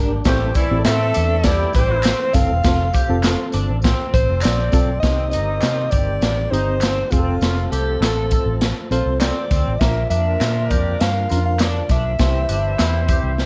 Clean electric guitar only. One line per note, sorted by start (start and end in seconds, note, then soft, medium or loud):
0.00 0.22 D4 medium
0.25 0.47 A3 medium
0.56 0.77 E4 medium
0.85 1.06 C4 medium
1.14 1.36 D4 medium
1.44 2.01 E4 medium
2.04 2.61 C4 medium
2.65 2.86 F4 medium
2.94 3.15 G4 medium
3.23 3.45 F4 medium
3.54 3.75 D4 medium
3.84 4.40 C4 medium
4.44 5.00 C4 medium
5.03 5.24 C4 medium
5.33 5.54 D#4 medium
5.63 5.84 F4 medium
5.93 6.14 G4 medium
6.53 6.74 D#4 medium
6.83 7.04 C4 medium
7.13 7.34 C4 medium
7.42 7.63 F4 medium
7.73 7.93 G4 medium
8.02 8.23 A4 medium
8.32 8.53 A4 medium
8.92 9.13 F4 medium
9.21 9.42 C4 medium
9.51 9.72 C4 medium
9.81 10.02 A#3 medium
10.11 10.32 D4 medium
10.40 10.62 F4 medium
10.71 10.92 G4 medium
11.30 11.51 F4 medium
11.61 11.82 D4 medium
11.91 12.12 D4 medium
12.20 12.41 C4 medium
12.49 12.70 D4 medium
12.79 13.00 E4 medium
13.09 13.30 G4 medium